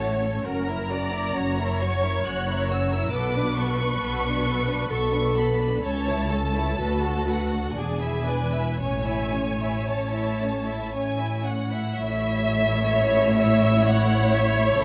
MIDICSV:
0, 0, Header, 1, 6, 480
1, 0, Start_track
1, 0, Key_signature, 3, "major"
1, 0, Tempo, 888889
1, 249, Time_signature, 3, 2, 24, 8
1, 2647, Tempo, 934579
1, 3127, Tempo, 969305
1, 4087, Tempo, 1022147
1, 4567, Tempo, 1073345
1, 5527, Tempo, 1013514
1, 6007, Tempo, 931677
1, 7495, End_track
2, 0, Start_track
2, 0, Title_t, "Violin section"
2, 0, Program_c, 0, 48
2, 250, Note_on_c, 0, 82, 79
2, 957, Note_off_c, 0, 82, 0
2, 973, Note_on_c, 0, 85, 85
2, 1214, Note_off_c, 0, 85, 0
2, 1216, Note_on_c, 0, 90, 85
2, 1452, Note_off_c, 0, 90, 0
2, 1457, Note_on_c, 0, 88, 76
2, 1684, Note_off_c, 0, 88, 0
2, 1691, Note_on_c, 0, 86, 84
2, 1925, Note_off_c, 0, 86, 0
2, 1930, Note_on_c, 0, 85, 94
2, 2648, Note_off_c, 0, 85, 0
2, 2654, Note_on_c, 0, 85, 86
2, 2882, Note_off_c, 0, 85, 0
2, 2894, Note_on_c, 0, 83, 70
2, 3132, Note_off_c, 0, 83, 0
2, 3140, Note_on_c, 0, 81, 91
2, 3837, Note_off_c, 0, 81, 0
2, 3851, Note_on_c, 0, 78, 70
2, 4087, Note_on_c, 0, 80, 72
2, 4089, Note_off_c, 0, 78, 0
2, 4560, Note_off_c, 0, 80, 0
2, 4566, Note_on_c, 0, 80, 78
2, 5046, Note_off_c, 0, 80, 0
2, 5064, Note_on_c, 0, 81, 60
2, 5525, Note_on_c, 0, 80, 80
2, 5530, Note_off_c, 0, 81, 0
2, 5753, Note_off_c, 0, 80, 0
2, 5766, Note_on_c, 0, 78, 78
2, 6004, Note_off_c, 0, 78, 0
2, 6004, Note_on_c, 0, 76, 112
2, 6740, Note_off_c, 0, 76, 0
2, 6747, Note_on_c, 0, 73, 97
2, 6977, Note_on_c, 0, 78, 103
2, 6982, Note_off_c, 0, 73, 0
2, 7212, Note_off_c, 0, 78, 0
2, 7220, Note_on_c, 0, 76, 87
2, 7448, Note_on_c, 0, 73, 102
2, 7450, Note_off_c, 0, 76, 0
2, 7495, Note_off_c, 0, 73, 0
2, 7495, End_track
3, 0, Start_track
3, 0, Title_t, "Viola section"
3, 0, Program_c, 1, 48
3, 0, Note_on_c, 1, 73, 65
3, 238, Note_off_c, 1, 73, 0
3, 245, Note_on_c, 1, 70, 52
3, 487, Note_off_c, 1, 70, 0
3, 492, Note_on_c, 1, 74, 62
3, 730, Note_on_c, 1, 73, 69
3, 735, Note_off_c, 1, 74, 0
3, 1684, Note_off_c, 1, 73, 0
3, 1686, Note_on_c, 1, 71, 74
3, 2627, Note_off_c, 1, 71, 0
3, 2642, Note_on_c, 1, 69, 75
3, 3125, Note_off_c, 1, 69, 0
3, 3130, Note_on_c, 1, 73, 67
3, 3362, Note_off_c, 1, 73, 0
3, 3364, Note_on_c, 1, 69, 60
3, 3600, Note_on_c, 1, 66, 63
3, 3605, Note_off_c, 1, 69, 0
3, 4074, Note_off_c, 1, 66, 0
3, 4089, Note_on_c, 1, 68, 62
3, 4319, Note_on_c, 1, 71, 63
3, 4322, Note_off_c, 1, 68, 0
3, 4566, Note_off_c, 1, 71, 0
3, 4568, Note_on_c, 1, 73, 57
3, 5772, Note_off_c, 1, 73, 0
3, 6501, Note_on_c, 1, 73, 92
3, 6726, Note_off_c, 1, 73, 0
3, 6746, Note_on_c, 1, 76, 93
3, 6976, Note_off_c, 1, 76, 0
3, 6983, Note_on_c, 1, 73, 99
3, 7495, Note_off_c, 1, 73, 0
3, 7495, End_track
4, 0, Start_track
4, 0, Title_t, "Violin section"
4, 0, Program_c, 2, 48
4, 0, Note_on_c, 2, 57, 44
4, 0, Note_on_c, 2, 66, 40
4, 119, Note_on_c, 2, 61, 45
4, 119, Note_on_c, 2, 69, 39
4, 120, Note_off_c, 2, 57, 0
4, 121, Note_off_c, 2, 66, 0
4, 236, Note_off_c, 2, 61, 0
4, 240, Note_on_c, 2, 66, 55
4, 243, Note_on_c, 2, 61, 49
4, 244, Note_off_c, 2, 69, 0
4, 356, Note_off_c, 2, 66, 0
4, 357, Note_off_c, 2, 61, 0
4, 364, Note_on_c, 2, 70, 48
4, 368, Note_on_c, 2, 64, 46
4, 484, Note_on_c, 2, 61, 46
4, 486, Note_on_c, 2, 66, 42
4, 487, Note_off_c, 2, 70, 0
4, 489, Note_off_c, 2, 64, 0
4, 601, Note_on_c, 2, 70, 45
4, 604, Note_on_c, 2, 64, 43
4, 609, Note_off_c, 2, 61, 0
4, 609, Note_off_c, 2, 66, 0
4, 722, Note_on_c, 2, 61, 51
4, 724, Note_on_c, 2, 66, 50
4, 729, Note_off_c, 2, 70, 0
4, 730, Note_off_c, 2, 64, 0
4, 841, Note_off_c, 2, 61, 0
4, 843, Note_off_c, 2, 66, 0
4, 855, Note_on_c, 2, 64, 50
4, 858, Note_on_c, 2, 70, 46
4, 977, Note_off_c, 2, 64, 0
4, 978, Note_off_c, 2, 70, 0
4, 980, Note_on_c, 2, 61, 53
4, 980, Note_on_c, 2, 66, 49
4, 1097, Note_on_c, 2, 64, 46
4, 1097, Note_on_c, 2, 70, 45
4, 1099, Note_off_c, 2, 61, 0
4, 1099, Note_off_c, 2, 66, 0
4, 1215, Note_on_c, 2, 61, 51
4, 1216, Note_off_c, 2, 64, 0
4, 1216, Note_off_c, 2, 70, 0
4, 1218, Note_on_c, 2, 66, 48
4, 1325, Note_off_c, 2, 61, 0
4, 1327, Note_off_c, 2, 66, 0
4, 1338, Note_on_c, 2, 64, 44
4, 1338, Note_on_c, 2, 70, 50
4, 1454, Note_off_c, 2, 64, 0
4, 1454, Note_off_c, 2, 70, 0
4, 1461, Note_on_c, 2, 66, 49
4, 1462, Note_on_c, 2, 61, 44
4, 1574, Note_off_c, 2, 61, 0
4, 1574, Note_off_c, 2, 66, 0
4, 1583, Note_on_c, 2, 64, 44
4, 1583, Note_on_c, 2, 70, 44
4, 1688, Note_on_c, 2, 59, 53
4, 1692, Note_on_c, 2, 69, 54
4, 1693, Note_off_c, 2, 64, 0
4, 1693, Note_off_c, 2, 70, 0
4, 1797, Note_off_c, 2, 59, 0
4, 1799, Note_off_c, 2, 69, 0
4, 1810, Note_on_c, 2, 71, 47
4, 1812, Note_on_c, 2, 62, 46
4, 1926, Note_off_c, 2, 71, 0
4, 1927, Note_off_c, 2, 62, 0
4, 1929, Note_on_c, 2, 59, 51
4, 1931, Note_on_c, 2, 69, 49
4, 2046, Note_off_c, 2, 59, 0
4, 2047, Note_off_c, 2, 69, 0
4, 2053, Note_on_c, 2, 71, 49
4, 2055, Note_on_c, 2, 62, 48
4, 2160, Note_on_c, 2, 59, 54
4, 2160, Note_on_c, 2, 69, 52
4, 2168, Note_off_c, 2, 71, 0
4, 2170, Note_off_c, 2, 62, 0
4, 2274, Note_off_c, 2, 59, 0
4, 2274, Note_off_c, 2, 69, 0
4, 2288, Note_on_c, 2, 62, 53
4, 2290, Note_on_c, 2, 71, 51
4, 2406, Note_off_c, 2, 62, 0
4, 2406, Note_on_c, 2, 59, 51
4, 2407, Note_off_c, 2, 71, 0
4, 2407, Note_on_c, 2, 69, 53
4, 2526, Note_off_c, 2, 59, 0
4, 2526, Note_off_c, 2, 69, 0
4, 2527, Note_on_c, 2, 62, 51
4, 2527, Note_on_c, 2, 71, 51
4, 2644, Note_on_c, 2, 59, 58
4, 2644, Note_on_c, 2, 69, 58
4, 2647, Note_off_c, 2, 62, 0
4, 2648, Note_off_c, 2, 71, 0
4, 2754, Note_off_c, 2, 59, 0
4, 2754, Note_off_c, 2, 69, 0
4, 2762, Note_on_c, 2, 62, 50
4, 2765, Note_on_c, 2, 71, 50
4, 2882, Note_on_c, 2, 59, 50
4, 2883, Note_off_c, 2, 62, 0
4, 2884, Note_off_c, 2, 71, 0
4, 2884, Note_on_c, 2, 69, 52
4, 3000, Note_on_c, 2, 62, 46
4, 3003, Note_on_c, 2, 71, 52
4, 3004, Note_off_c, 2, 59, 0
4, 3005, Note_off_c, 2, 69, 0
4, 3125, Note_off_c, 2, 62, 0
4, 3126, Note_off_c, 2, 71, 0
4, 3126, Note_on_c, 2, 61, 52
4, 3126, Note_on_c, 2, 69, 55
4, 3237, Note_off_c, 2, 61, 0
4, 3237, Note_off_c, 2, 69, 0
4, 3243, Note_on_c, 2, 73, 55
4, 3244, Note_on_c, 2, 64, 51
4, 3356, Note_on_c, 2, 69, 49
4, 3357, Note_on_c, 2, 61, 52
4, 3364, Note_off_c, 2, 73, 0
4, 3365, Note_off_c, 2, 64, 0
4, 3481, Note_off_c, 2, 61, 0
4, 3481, Note_off_c, 2, 69, 0
4, 3482, Note_on_c, 2, 64, 51
4, 3482, Note_on_c, 2, 73, 54
4, 3597, Note_on_c, 2, 71, 54
4, 3599, Note_on_c, 2, 69, 52
4, 3604, Note_off_c, 2, 64, 0
4, 3604, Note_off_c, 2, 73, 0
4, 3713, Note_off_c, 2, 69, 0
4, 3713, Note_off_c, 2, 71, 0
4, 3718, Note_on_c, 2, 66, 45
4, 3719, Note_on_c, 2, 69, 53
4, 3828, Note_off_c, 2, 69, 0
4, 3834, Note_on_c, 2, 69, 46
4, 3836, Note_on_c, 2, 71, 50
4, 3841, Note_off_c, 2, 66, 0
4, 3948, Note_off_c, 2, 69, 0
4, 3954, Note_on_c, 2, 69, 42
4, 3957, Note_on_c, 2, 66, 44
4, 3961, Note_off_c, 2, 71, 0
4, 4073, Note_on_c, 2, 62, 47
4, 4076, Note_on_c, 2, 74, 49
4, 4081, Note_off_c, 2, 69, 0
4, 4082, Note_off_c, 2, 66, 0
4, 4188, Note_off_c, 2, 62, 0
4, 4189, Note_off_c, 2, 74, 0
4, 4197, Note_on_c, 2, 64, 42
4, 4197, Note_on_c, 2, 76, 43
4, 4316, Note_on_c, 2, 62, 45
4, 4318, Note_off_c, 2, 64, 0
4, 4318, Note_off_c, 2, 76, 0
4, 4318, Note_on_c, 2, 74, 47
4, 4438, Note_on_c, 2, 64, 39
4, 4440, Note_off_c, 2, 62, 0
4, 4441, Note_off_c, 2, 74, 0
4, 4441, Note_on_c, 2, 76, 40
4, 4565, Note_off_c, 2, 64, 0
4, 4565, Note_on_c, 2, 73, 52
4, 4567, Note_off_c, 2, 76, 0
4, 4567, Note_on_c, 2, 61, 52
4, 4679, Note_off_c, 2, 73, 0
4, 4680, Note_off_c, 2, 61, 0
4, 4682, Note_on_c, 2, 76, 45
4, 4684, Note_on_c, 2, 64, 43
4, 4804, Note_on_c, 2, 61, 45
4, 4807, Note_on_c, 2, 73, 41
4, 4808, Note_off_c, 2, 76, 0
4, 4809, Note_off_c, 2, 64, 0
4, 4928, Note_on_c, 2, 76, 43
4, 4931, Note_off_c, 2, 61, 0
4, 4932, Note_off_c, 2, 73, 0
4, 4932, Note_on_c, 2, 64, 43
4, 5051, Note_on_c, 2, 73, 44
4, 5052, Note_on_c, 2, 61, 46
4, 5054, Note_off_c, 2, 76, 0
4, 5056, Note_off_c, 2, 64, 0
4, 5165, Note_off_c, 2, 73, 0
4, 5166, Note_off_c, 2, 61, 0
4, 5166, Note_on_c, 2, 64, 45
4, 5167, Note_on_c, 2, 76, 41
4, 5289, Note_off_c, 2, 64, 0
4, 5290, Note_off_c, 2, 76, 0
4, 5295, Note_on_c, 2, 61, 40
4, 5297, Note_on_c, 2, 73, 44
4, 5401, Note_on_c, 2, 64, 42
4, 5405, Note_on_c, 2, 76, 39
4, 5411, Note_off_c, 2, 61, 0
4, 5412, Note_off_c, 2, 73, 0
4, 5521, Note_off_c, 2, 64, 0
4, 5522, Note_on_c, 2, 61, 46
4, 5523, Note_off_c, 2, 76, 0
4, 5523, Note_on_c, 2, 73, 45
4, 5637, Note_off_c, 2, 61, 0
4, 5637, Note_off_c, 2, 73, 0
4, 5643, Note_on_c, 2, 76, 38
4, 5645, Note_on_c, 2, 64, 43
4, 5761, Note_on_c, 2, 61, 39
4, 5763, Note_on_c, 2, 73, 39
4, 5769, Note_off_c, 2, 64, 0
4, 5769, Note_off_c, 2, 76, 0
4, 5887, Note_off_c, 2, 61, 0
4, 5888, Note_off_c, 2, 73, 0
4, 5891, Note_on_c, 2, 64, 44
4, 5893, Note_on_c, 2, 76, 44
4, 6000, Note_off_c, 2, 64, 0
4, 6005, Note_on_c, 2, 64, 85
4, 6006, Note_on_c, 2, 73, 86
4, 6007, Note_off_c, 2, 76, 0
4, 7425, Note_off_c, 2, 73, 0
4, 7446, Note_on_c, 2, 69, 92
4, 7495, Note_off_c, 2, 64, 0
4, 7495, Note_off_c, 2, 69, 0
4, 7495, End_track
5, 0, Start_track
5, 0, Title_t, "Cello section"
5, 0, Program_c, 3, 48
5, 0, Note_on_c, 3, 45, 58
5, 189, Note_off_c, 3, 45, 0
5, 253, Note_on_c, 3, 42, 58
5, 678, Note_off_c, 3, 42, 0
5, 737, Note_on_c, 3, 42, 67
5, 1162, Note_off_c, 3, 42, 0
5, 1220, Note_on_c, 3, 42, 61
5, 1633, Note_off_c, 3, 42, 0
5, 1688, Note_on_c, 3, 47, 68
5, 2107, Note_off_c, 3, 47, 0
5, 2164, Note_on_c, 3, 47, 72
5, 2589, Note_off_c, 3, 47, 0
5, 2653, Note_on_c, 3, 47, 57
5, 3072, Note_off_c, 3, 47, 0
5, 3131, Note_on_c, 3, 37, 72
5, 3551, Note_off_c, 3, 37, 0
5, 3610, Note_on_c, 3, 38, 66
5, 4031, Note_off_c, 3, 38, 0
5, 4088, Note_on_c, 3, 40, 60
5, 4509, Note_off_c, 3, 40, 0
5, 4572, Note_on_c, 3, 45, 59
5, 5001, Note_off_c, 3, 45, 0
5, 5061, Note_on_c, 3, 45, 61
5, 5474, Note_off_c, 3, 45, 0
5, 5531, Note_on_c, 3, 45, 46
5, 5955, Note_off_c, 3, 45, 0
5, 6016, Note_on_c, 3, 45, 86
5, 7431, Note_off_c, 3, 45, 0
5, 7454, Note_on_c, 3, 49, 84
5, 7495, Note_off_c, 3, 49, 0
5, 7495, End_track
6, 0, Start_track
6, 0, Title_t, "Double bass section"
6, 0, Program_c, 4, 48
6, 0, Note_on_c, 4, 33, 58
6, 191, Note_off_c, 4, 33, 0
6, 247, Note_on_c, 4, 30, 63
6, 675, Note_off_c, 4, 30, 0
6, 734, Note_on_c, 4, 30, 64
6, 1161, Note_off_c, 4, 30, 0
6, 1215, Note_on_c, 4, 30, 71
6, 1630, Note_off_c, 4, 30, 0
6, 1678, Note_on_c, 4, 35, 74
6, 2102, Note_off_c, 4, 35, 0
6, 2159, Note_on_c, 4, 35, 70
6, 2587, Note_off_c, 4, 35, 0
6, 2644, Note_on_c, 4, 35, 64
6, 3068, Note_off_c, 4, 35, 0
6, 3125, Note_on_c, 4, 37, 73
6, 3549, Note_off_c, 4, 37, 0
6, 3604, Note_on_c, 4, 38, 70
6, 4028, Note_off_c, 4, 38, 0
6, 4083, Note_on_c, 4, 28, 67
6, 4507, Note_off_c, 4, 28, 0
6, 4562, Note_on_c, 4, 33, 64
6, 4997, Note_off_c, 4, 33, 0
6, 5056, Note_on_c, 4, 33, 58
6, 5471, Note_off_c, 4, 33, 0
6, 5525, Note_on_c, 4, 33, 55
6, 5952, Note_off_c, 4, 33, 0
6, 6010, Note_on_c, 4, 33, 88
6, 7427, Note_off_c, 4, 33, 0
6, 7452, Note_on_c, 4, 37, 84
6, 7495, Note_off_c, 4, 37, 0
6, 7495, End_track
0, 0, End_of_file